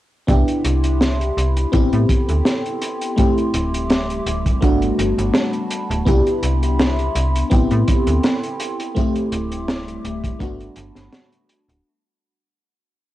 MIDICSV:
0, 0, Header, 1, 5, 480
1, 0, Start_track
1, 0, Key_signature, 1, "major"
1, 0, Tempo, 722892
1, 191, Time_signature, 4, 2, 24, 8
1, 8730, End_track
2, 0, Start_track
2, 0, Title_t, "Ambient pad"
2, 0, Program_c, 0, 92
2, 193, Note_on_c, 0, 67, 77
2, 193, Note_on_c, 0, 76, 74
2, 193, Note_on_c, 0, 83, 75
2, 193, Note_on_c, 0, 84, 89
2, 1142, Note_off_c, 0, 76, 0
2, 1142, Note_off_c, 0, 84, 0
2, 1143, Note_off_c, 0, 67, 0
2, 1154, Note_on_c, 0, 84, 87
2, 1155, Note_on_c, 0, 69, 79
2, 1155, Note_on_c, 0, 79, 71
2, 2093, Note_off_c, 0, 83, 0
2, 2103, Note_off_c, 0, 69, 0
2, 2103, Note_off_c, 0, 79, 0
2, 2113, Note_on_c, 0, 55, 83
2, 2113, Note_on_c, 0, 86, 89
2, 2114, Note_on_c, 0, 76, 74
2, 3053, Note_off_c, 0, 84, 0
2, 3062, Note_off_c, 0, 86, 0
2, 3063, Note_off_c, 0, 76, 0
2, 3071, Note_on_c, 0, 78, 76
2, 3072, Note_on_c, 0, 81, 73
2, 3072, Note_on_c, 0, 83, 89
2, 4021, Note_off_c, 0, 78, 0
2, 4022, Note_off_c, 0, 81, 0
2, 4031, Note_on_c, 0, 76, 76
2, 4031, Note_on_c, 0, 84, 94
2, 4965, Note_off_c, 0, 55, 0
2, 4981, Note_off_c, 0, 76, 0
2, 4992, Note_on_c, 0, 69, 80
2, 4992, Note_on_c, 0, 79, 73
2, 5925, Note_off_c, 0, 83, 0
2, 5942, Note_off_c, 0, 69, 0
2, 5942, Note_off_c, 0, 79, 0
2, 5951, Note_on_c, 0, 76, 76
2, 5951, Note_on_c, 0, 86, 90
2, 5952, Note_on_c, 0, 55, 82
2, 6885, Note_off_c, 0, 84, 0
2, 6901, Note_off_c, 0, 86, 0
2, 6902, Note_off_c, 0, 76, 0
2, 6911, Note_on_c, 0, 78, 75
2, 6912, Note_on_c, 0, 81, 74
2, 6912, Note_on_c, 0, 83, 91
2, 7852, Note_off_c, 0, 55, 0
2, 7861, Note_off_c, 0, 78, 0
2, 7862, Note_off_c, 0, 81, 0
2, 7862, Note_off_c, 0, 83, 0
2, 8730, End_track
3, 0, Start_track
3, 0, Title_t, "FM electric piano"
3, 0, Program_c, 1, 5
3, 181, Note_on_c, 1, 59, 72
3, 188, Note_on_c, 1, 62, 70
3, 195, Note_on_c, 1, 64, 66
3, 201, Note_on_c, 1, 67, 81
3, 329, Control_c, 1, 64, 127
3, 1102, Note_off_c, 1, 59, 0
3, 1105, Note_off_c, 1, 62, 0
3, 1109, Note_off_c, 1, 64, 0
3, 1112, Note_off_c, 1, 67, 0
3, 1141, Note_on_c, 1, 59, 73
3, 1148, Note_on_c, 1, 60, 67
3, 1155, Note_on_c, 1, 64, 69
3, 1158, Control_c, 1, 64, 0
3, 1161, Note_on_c, 1, 67, 80
3, 1294, Control_c, 1, 64, 127
3, 2062, Note_off_c, 1, 59, 0
3, 2065, Note_off_c, 1, 60, 0
3, 2069, Note_off_c, 1, 64, 0
3, 2072, Note_off_c, 1, 67, 0
3, 2099, Note_on_c, 1, 57, 76
3, 2106, Note_on_c, 1, 60, 71
3, 2113, Note_on_c, 1, 64, 69
3, 2119, Note_on_c, 1, 67, 85
3, 2120, Control_c, 1, 64, 0
3, 2254, Control_c, 1, 64, 127
3, 3021, Note_off_c, 1, 57, 0
3, 3024, Note_off_c, 1, 60, 0
3, 3028, Note_off_c, 1, 64, 0
3, 3031, Note_off_c, 1, 67, 0
3, 3059, Note_on_c, 1, 57, 75
3, 3066, Note_on_c, 1, 59, 68
3, 3073, Note_on_c, 1, 62, 71
3, 3079, Note_on_c, 1, 66, 86
3, 3080, Control_c, 1, 64, 0
3, 3189, Control_c, 1, 64, 127
3, 3981, Note_off_c, 1, 57, 0
3, 3984, Note_off_c, 1, 59, 0
3, 3988, Note_off_c, 1, 62, 0
3, 3991, Note_off_c, 1, 66, 0
3, 4019, Note_on_c, 1, 59, 78
3, 4026, Note_on_c, 1, 62, 68
3, 4033, Note_on_c, 1, 64, 69
3, 4039, Note_on_c, 1, 67, 82
3, 4040, Control_c, 1, 64, 0
3, 4168, Control_c, 1, 64, 127
3, 4941, Note_off_c, 1, 59, 0
3, 4944, Note_off_c, 1, 62, 0
3, 4948, Note_off_c, 1, 64, 0
3, 4951, Note_off_c, 1, 67, 0
3, 4980, Note_on_c, 1, 59, 79
3, 4986, Note_on_c, 1, 60, 72
3, 4993, Note_on_c, 1, 64, 70
3, 4999, Control_c, 1, 64, 0
3, 4999, Note_on_c, 1, 67, 87
3, 5116, Control_c, 1, 64, 127
3, 5901, Note_off_c, 1, 59, 0
3, 5905, Note_off_c, 1, 60, 0
3, 5908, Note_off_c, 1, 64, 0
3, 5911, Note_off_c, 1, 67, 0
3, 5942, Note_on_c, 1, 57, 81
3, 5949, Note_on_c, 1, 60, 72
3, 5955, Note_on_c, 1, 64, 72
3, 5960, Control_c, 1, 64, 0
3, 5962, Note_on_c, 1, 67, 84
3, 6084, Control_c, 1, 64, 127
3, 6862, Note_off_c, 1, 57, 0
3, 6866, Note_off_c, 1, 60, 0
3, 6869, Note_off_c, 1, 64, 0
3, 6872, Note_off_c, 1, 67, 0
3, 6901, Note_on_c, 1, 57, 77
3, 6908, Note_on_c, 1, 59, 73
3, 6915, Note_on_c, 1, 62, 75
3, 6919, Control_c, 1, 64, 0
3, 6922, Note_on_c, 1, 66, 91
3, 7024, Control_c, 1, 64, 127
3, 7822, Note_off_c, 1, 57, 0
3, 7825, Note_off_c, 1, 59, 0
3, 7829, Note_off_c, 1, 62, 0
3, 7832, Note_off_c, 1, 66, 0
3, 7880, Control_c, 1, 64, 0
3, 8730, End_track
4, 0, Start_track
4, 0, Title_t, "FM bass"
4, 0, Program_c, 2, 39
4, 189, Note_on_c, 2, 36, 95
4, 290, Note_off_c, 2, 36, 0
4, 430, Note_on_c, 2, 36, 84
4, 870, Note_off_c, 2, 36, 0
4, 910, Note_on_c, 2, 36, 77
4, 1100, Note_off_c, 2, 36, 0
4, 1152, Note_on_c, 2, 33, 83
4, 1252, Note_off_c, 2, 33, 0
4, 1280, Note_on_c, 2, 45, 101
4, 1366, Note_off_c, 2, 45, 0
4, 1521, Note_on_c, 2, 38, 81
4, 1606, Note_off_c, 2, 38, 0
4, 2351, Note_on_c, 2, 26, 88
4, 2791, Note_off_c, 2, 26, 0
4, 2830, Note_on_c, 2, 26, 81
4, 3020, Note_off_c, 2, 26, 0
4, 3071, Note_on_c, 2, 31, 83
4, 3261, Note_off_c, 2, 31, 0
4, 3310, Note_on_c, 2, 31, 95
4, 3411, Note_off_c, 2, 31, 0
4, 3439, Note_on_c, 2, 31, 96
4, 3525, Note_off_c, 2, 31, 0
4, 3918, Note_on_c, 2, 26, 92
4, 4005, Note_off_c, 2, 26, 0
4, 4027, Note_on_c, 2, 36, 100
4, 4129, Note_off_c, 2, 36, 0
4, 4268, Note_on_c, 2, 36, 84
4, 4710, Note_off_c, 2, 36, 0
4, 4750, Note_on_c, 2, 36, 79
4, 4940, Note_off_c, 2, 36, 0
4, 4991, Note_on_c, 2, 33, 88
4, 5091, Note_off_c, 2, 33, 0
4, 5120, Note_on_c, 2, 45, 101
4, 5205, Note_off_c, 2, 45, 0
4, 5359, Note_on_c, 2, 38, 84
4, 5445, Note_off_c, 2, 38, 0
4, 6190, Note_on_c, 2, 26, 88
4, 6630, Note_off_c, 2, 26, 0
4, 6669, Note_on_c, 2, 26, 79
4, 6860, Note_off_c, 2, 26, 0
4, 6908, Note_on_c, 2, 31, 81
4, 7099, Note_off_c, 2, 31, 0
4, 7150, Note_on_c, 2, 31, 98
4, 7251, Note_off_c, 2, 31, 0
4, 7279, Note_on_c, 2, 31, 96
4, 7365, Note_off_c, 2, 31, 0
4, 7758, Note_on_c, 2, 26, 95
4, 7845, Note_off_c, 2, 26, 0
4, 8730, End_track
5, 0, Start_track
5, 0, Title_t, "Drums"
5, 188, Note_on_c, 9, 42, 60
5, 189, Note_on_c, 9, 36, 114
5, 255, Note_off_c, 9, 42, 0
5, 256, Note_off_c, 9, 36, 0
5, 318, Note_on_c, 9, 42, 44
5, 384, Note_off_c, 9, 42, 0
5, 428, Note_on_c, 9, 42, 99
5, 495, Note_off_c, 9, 42, 0
5, 556, Note_on_c, 9, 42, 64
5, 622, Note_off_c, 9, 42, 0
5, 670, Note_on_c, 9, 38, 104
5, 674, Note_on_c, 9, 42, 61
5, 736, Note_off_c, 9, 38, 0
5, 740, Note_off_c, 9, 42, 0
5, 803, Note_on_c, 9, 42, 44
5, 870, Note_off_c, 9, 42, 0
5, 915, Note_on_c, 9, 42, 90
5, 982, Note_off_c, 9, 42, 0
5, 1040, Note_on_c, 9, 42, 64
5, 1106, Note_off_c, 9, 42, 0
5, 1147, Note_on_c, 9, 42, 71
5, 1151, Note_on_c, 9, 36, 99
5, 1213, Note_off_c, 9, 42, 0
5, 1218, Note_off_c, 9, 36, 0
5, 1278, Note_on_c, 9, 42, 45
5, 1345, Note_off_c, 9, 42, 0
5, 1388, Note_on_c, 9, 36, 95
5, 1389, Note_on_c, 9, 42, 93
5, 1455, Note_off_c, 9, 36, 0
5, 1456, Note_off_c, 9, 42, 0
5, 1518, Note_on_c, 9, 42, 60
5, 1585, Note_off_c, 9, 42, 0
5, 1629, Note_on_c, 9, 38, 104
5, 1634, Note_on_c, 9, 42, 65
5, 1695, Note_off_c, 9, 38, 0
5, 1700, Note_off_c, 9, 42, 0
5, 1764, Note_on_c, 9, 42, 43
5, 1830, Note_off_c, 9, 42, 0
5, 1869, Note_on_c, 9, 42, 95
5, 1936, Note_off_c, 9, 42, 0
5, 2001, Note_on_c, 9, 42, 66
5, 2067, Note_off_c, 9, 42, 0
5, 2109, Note_on_c, 9, 42, 66
5, 2114, Note_on_c, 9, 36, 111
5, 2175, Note_off_c, 9, 42, 0
5, 2180, Note_off_c, 9, 36, 0
5, 2242, Note_on_c, 9, 42, 40
5, 2308, Note_off_c, 9, 42, 0
5, 2349, Note_on_c, 9, 42, 101
5, 2416, Note_off_c, 9, 42, 0
5, 2484, Note_on_c, 9, 42, 64
5, 2551, Note_off_c, 9, 42, 0
5, 2587, Note_on_c, 9, 42, 62
5, 2592, Note_on_c, 9, 38, 108
5, 2654, Note_off_c, 9, 42, 0
5, 2659, Note_off_c, 9, 38, 0
5, 2722, Note_on_c, 9, 42, 45
5, 2788, Note_off_c, 9, 42, 0
5, 2831, Note_on_c, 9, 42, 96
5, 2898, Note_off_c, 9, 42, 0
5, 2960, Note_on_c, 9, 36, 59
5, 2961, Note_on_c, 9, 42, 62
5, 3027, Note_off_c, 9, 36, 0
5, 3028, Note_off_c, 9, 42, 0
5, 3069, Note_on_c, 9, 42, 66
5, 3071, Note_on_c, 9, 36, 121
5, 3135, Note_off_c, 9, 42, 0
5, 3137, Note_off_c, 9, 36, 0
5, 3200, Note_on_c, 9, 42, 47
5, 3266, Note_off_c, 9, 42, 0
5, 3313, Note_on_c, 9, 42, 94
5, 3379, Note_off_c, 9, 42, 0
5, 3443, Note_on_c, 9, 42, 61
5, 3509, Note_off_c, 9, 42, 0
5, 3543, Note_on_c, 9, 38, 121
5, 3548, Note_on_c, 9, 42, 63
5, 3610, Note_off_c, 9, 38, 0
5, 3614, Note_off_c, 9, 42, 0
5, 3673, Note_on_c, 9, 42, 41
5, 3740, Note_off_c, 9, 42, 0
5, 3788, Note_on_c, 9, 42, 107
5, 3855, Note_off_c, 9, 42, 0
5, 3923, Note_on_c, 9, 42, 70
5, 3990, Note_off_c, 9, 42, 0
5, 4027, Note_on_c, 9, 36, 113
5, 4030, Note_on_c, 9, 42, 63
5, 4094, Note_off_c, 9, 36, 0
5, 4096, Note_off_c, 9, 42, 0
5, 4161, Note_on_c, 9, 42, 43
5, 4227, Note_off_c, 9, 42, 0
5, 4268, Note_on_c, 9, 42, 90
5, 4334, Note_off_c, 9, 42, 0
5, 4400, Note_on_c, 9, 42, 58
5, 4467, Note_off_c, 9, 42, 0
5, 4510, Note_on_c, 9, 42, 62
5, 4512, Note_on_c, 9, 38, 127
5, 4577, Note_off_c, 9, 42, 0
5, 4578, Note_off_c, 9, 38, 0
5, 4639, Note_on_c, 9, 42, 39
5, 4706, Note_off_c, 9, 42, 0
5, 4750, Note_on_c, 9, 42, 98
5, 4816, Note_off_c, 9, 42, 0
5, 4884, Note_on_c, 9, 42, 65
5, 4950, Note_off_c, 9, 42, 0
5, 4986, Note_on_c, 9, 42, 60
5, 4991, Note_on_c, 9, 36, 127
5, 5052, Note_off_c, 9, 42, 0
5, 5057, Note_off_c, 9, 36, 0
5, 5117, Note_on_c, 9, 42, 42
5, 5183, Note_off_c, 9, 42, 0
5, 5230, Note_on_c, 9, 42, 92
5, 5233, Note_on_c, 9, 36, 99
5, 5296, Note_off_c, 9, 42, 0
5, 5299, Note_off_c, 9, 36, 0
5, 5357, Note_on_c, 9, 42, 59
5, 5424, Note_off_c, 9, 42, 0
5, 5467, Note_on_c, 9, 42, 58
5, 5472, Note_on_c, 9, 38, 116
5, 5534, Note_off_c, 9, 42, 0
5, 5539, Note_off_c, 9, 38, 0
5, 5600, Note_on_c, 9, 42, 48
5, 5667, Note_off_c, 9, 42, 0
5, 5709, Note_on_c, 9, 42, 109
5, 5775, Note_off_c, 9, 42, 0
5, 5842, Note_on_c, 9, 42, 73
5, 5908, Note_off_c, 9, 42, 0
5, 5952, Note_on_c, 9, 42, 64
5, 5955, Note_on_c, 9, 36, 118
5, 6018, Note_off_c, 9, 42, 0
5, 6022, Note_off_c, 9, 36, 0
5, 6079, Note_on_c, 9, 42, 45
5, 6146, Note_off_c, 9, 42, 0
5, 6189, Note_on_c, 9, 42, 95
5, 6256, Note_off_c, 9, 42, 0
5, 6319, Note_on_c, 9, 42, 66
5, 6386, Note_off_c, 9, 42, 0
5, 6430, Note_on_c, 9, 38, 125
5, 6434, Note_on_c, 9, 42, 67
5, 6496, Note_off_c, 9, 38, 0
5, 6501, Note_off_c, 9, 42, 0
5, 6561, Note_on_c, 9, 42, 46
5, 6627, Note_off_c, 9, 42, 0
5, 6672, Note_on_c, 9, 42, 90
5, 6738, Note_off_c, 9, 42, 0
5, 6798, Note_on_c, 9, 36, 59
5, 6800, Note_on_c, 9, 42, 66
5, 6864, Note_off_c, 9, 36, 0
5, 6867, Note_off_c, 9, 42, 0
5, 6908, Note_on_c, 9, 36, 112
5, 6909, Note_on_c, 9, 42, 71
5, 6974, Note_off_c, 9, 36, 0
5, 6976, Note_off_c, 9, 42, 0
5, 7041, Note_on_c, 9, 42, 43
5, 7107, Note_off_c, 9, 42, 0
5, 7143, Note_on_c, 9, 42, 100
5, 7210, Note_off_c, 9, 42, 0
5, 7273, Note_on_c, 9, 38, 37
5, 7279, Note_on_c, 9, 42, 62
5, 7340, Note_off_c, 9, 38, 0
5, 7345, Note_off_c, 9, 42, 0
5, 7387, Note_on_c, 9, 38, 109
5, 7388, Note_on_c, 9, 42, 68
5, 7454, Note_off_c, 9, 38, 0
5, 7454, Note_off_c, 9, 42, 0
5, 7519, Note_on_c, 9, 42, 46
5, 7585, Note_off_c, 9, 42, 0
5, 7630, Note_on_c, 9, 42, 97
5, 7697, Note_off_c, 9, 42, 0
5, 7763, Note_on_c, 9, 42, 66
5, 7830, Note_off_c, 9, 42, 0
5, 8730, End_track
0, 0, End_of_file